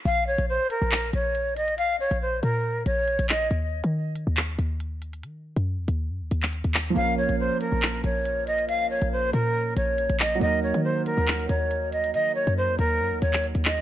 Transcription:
<<
  \new Staff \with { instrumentName = "Flute" } { \time 4/4 \key bes \minor \tempo 4 = 139 f''8 des''8 c''8 bes'4 des''4 ees''8 | f''8 des''8 c''8 bes'4 des''4 ees''8 | r1 | r1 |
f''8 des''8 c''8 bes'4 des''4 ees''8 | f''8 des''8 c''8 bes'4 des''4 ees''8 | ees''8 des''8 c''8 bes'4 des''4 ees''8 | ees''8 des''8 c''8 bes'4 des''4 ees''8 | }
  \new Staff \with { instrumentName = "Grand piano" } { \time 4/4 \key bes \minor r1 | r1 | r1 | r1 |
<f bes des' bes'>1~ | <f bes des' bes'>1 | <ges bes ees' bes'>1~ | <ges bes ees' bes'>1 | }
  \new Staff \with { instrumentName = "808-style bass" } { \clef bass \time 4/4 \key bes \minor bes,,8. bes,,8 r8 bes,,8. bes,,4.~ | bes,,8. bes,,8. bes,4 bes,,8. bes,,8. | ees,8. ees4 ees,8. ees,4. | ees8. ges,8 f,16 ees,8 ges,16 ees,16 ees,8. ees,8. |
bes,,8. bes,,8 r8 bes,,8. bes,,4.~ | bes,,8. bes,,8. bes,4 bes,,8. bes,,8. | ees,8. ees4 ees,8. ees,4. | ees8. ges,8 f,16 ees,8 ges,16 ees,16 ees,8. ees,8. | }
  \new DrumStaff \with { instrumentName = "Drums" } \drummode { \time 4/4 hh8. hh16 r8 hh8 hc8 hh8 hh8 hh16 hh16 | hh8. hh16 r8 hh8 r8 hh8 hh16 hh16 <hc hh>8 | hh8. hh16 r8 hh8 hc8 hh8 hh8 hh16 hh16 | hh8. hh16 r8 hh8 r8 hh16 hc16 hh16 hh16 <hc hho>8 |
hh8. hh16 r8 hh8 hc8 hh8 hh8 hh16 hh16 | hh8. hh16 r8 hh8 r8 hh8 hh16 hh16 <hc hh>8 | hh8. hh16 r8 hh8 hc8 hh8 hh8 hh16 hh16 | hh8. hh16 r8 hh8 r8 hh16 hc16 hh16 hh16 <hc hho>8 | }
>>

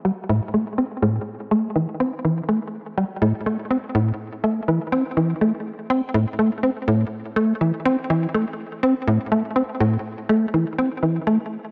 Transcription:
\new Staff \with { instrumentName = "Analog synth bass" } { \time 4/4 \key a \minor \tempo 4 = 123 g8 a,8 a8 c'8 a,8 r8 a8 e8 | c'8 e8 a8 r8 g8 a,8 a8 c'8 | a,8 r8 a8 e8 c'8 e8 a8 r8 | c'8 a,8 a8 c'8 a,8 r8 a8 e8 |
c'8 e8 a8 r8 c'8 a,8 a8 c'8 | a,8 r8 a8 e8 c'8 e8 a8 r8 | }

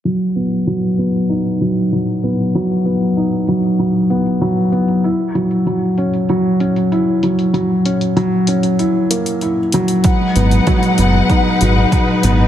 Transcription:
<<
  \new Staff \with { instrumentName = "String section" } { \time 4/4 \key fis \mixolydian \tempo 4 = 96 r1 | r1 | r1 | r1 |
<gis dis' b' fis''>1 | }
  \new Staff \with { instrumentName = "Felt piano" } { \time 4/4 \key fis \mixolydian fis8 b8 fis8 b8 dis'8 fis8 fis8 b8 | fis8 b8 dis'8 fis8 fis8 b8 fis8 b8 | e'8 fis8 fis8 cis'8 fis8 cis'8 e'8 fis8 | fis8 cis'8 fis8 cis'8 e'8 ais8 e'8 fis8 |
fis8 b8 fis8 b8 dis'8 fis8 fis8 b8 | }
  \new Staff \with { instrumentName = "Analog synth bass" } { \clef bass \time 4/4 \key fis \mixolydian r1 | r1 | r1 | r1 |
r8 gis,,8 r8 fis,,8 r8 gis,,8 r8 gis,,8 | }
  \new DrumStaff \with { instrumentName = "Drums" } \drummode { \time 4/4 hh8 hh16 hh16 r8 hh16 hh16 hh8 hh16 hh16 hh8 hh16 hh16 | hh8 hh16 hh16 hh8 hh16 hh16 hh8 hh16 hh16 hh8 hh16 hh16 | hh8 hh16 hh16 hh8 hh16 hh16 hh8 hh16 hh16 hh8 hh16 hh16 | hh8 hh16 hh16 hh8 hh16 hh16 hh8 hh16 hh16 hh8 hh16 hh16 |
<hh bd>8 hh16 hh16 <hh bd>16 hh16 hh8 <hh bd>8 hh8 <hh bd>8 hh8 | }
>>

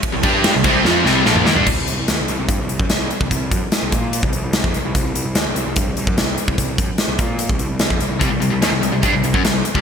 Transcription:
<<
  \new Staff \with { instrumentName = "Overdriven electric guitar" } { \clef bass \time 4/4 \key c \minor \tempo 4 = 147 r16 <c g>16 <g d' g'>8. <c g>16 <c g c'>8 <f c' f'>8 <c g c'>8 <bes, f bes>8 <ees bes>16 <g d'>16 | r1 | r1 | r1 |
r1 | <c g>16 <c g>16 <c g>16 <c g>16 <ees bes>16 <c g>16 <c g>16 <c g>16 <g d'>16 <c g>16 <c g>16 <fis des'>16 <c g>8 r16 <c g>16 | }
  \new Staff \with { instrumentName = "Overdriven electric guitar" } { \clef bass \time 4/4 \key c \minor r16 <c g>16 <g d' g'>8. <c g>16 <c g c'>8 <f c' f'>8 <c g c'>8 <bes, f bes>8 <ees bes>16 <g d'>16 | r1 | r1 | r1 |
r1 | <c g>16 <c g>16 <c g>16 <c g>16 <ees bes>16 <c g>16 <c g>16 <c g>16 <g d'>16 <c g>16 <c g>16 <fis des'>16 <c g>8 r16 <c g>16 | }
  \new Staff \with { instrumentName = "Overdriven electric guitar" } { \clef bass \time 4/4 \key c \minor r16 <c g>16 <g d' g'>8. <c g>16 <c g c'>8 <f c' f'>8 <c g c'>8 <bes, f bes>8 <ees bes>16 <g d'>16 | r1 | r1 | r1 |
r1 | r1 | }
  \new Staff \with { instrumentName = "Picked electric bass" } { \clef bass \time 4/4 \key c \minor r16 c,16 g,8. c,16 c,8 f,8 c,8 bes,,8 ees,16 g,16 | c,16 c,16 c,16 c,16 ees,16 c,16 c,16 c,16 g,16 c,16 c,16 fis,16 c,8 r16 c,16 | c,8 fis,16 r8 c,16 bes,8. c,16 c,16 c,8 f,16 c,16 c,16 | c,16 c,16 c,16 c,16 ees,16 c,16 c,16 c,16 g,16 c,16 c,16 fis,16 c,8 r16 c,16 |
c,8 fis,16 r8 c,16 bes,8. c,16 c,16 c,8 f,16 c,16 c,16 | c,16 c,16 c,16 c,16 ees,16 c,16 c,16 c,16 g,16 c,16 c,16 fis,16 c,8 r16 c,16 | }
  \new DrumStaff \with { instrumentName = "Drums" } \drummode { \time 4/4 <bd cymr>8 <bd cymr>8 <cymr sn>8 <bd cymr sn>8 sn8 sn8 sn16 toml16 sn16 tomfh16 | <cymc bd>8 hh8 <hh sn>8 hh8 <hh bd>8 hh16 bd16 <hh sn>8 hh16 bd16 | <hh bd>8 <hh bd>8 <hh sn>8 <hh bd>8 hh16 bd16 hh8 <hh sn>16 bd16 hh8 | <hh bd>8 hh8 <hh sn>8 hh8 <hh bd>8 hh16 bd16 <hh sn>8 hh16 bd16 |
<hh bd>8 <hh bd>8 <hh sn>8 <hh bd>8 hh16 bd16 hh8 <hh sn>16 bd16 hh8 | <hh bd>8 hh8 <hh sn>8 hh8 <hh bd>8 hh16 bd16 <hh sn>8 hh16 bd16 | }
>>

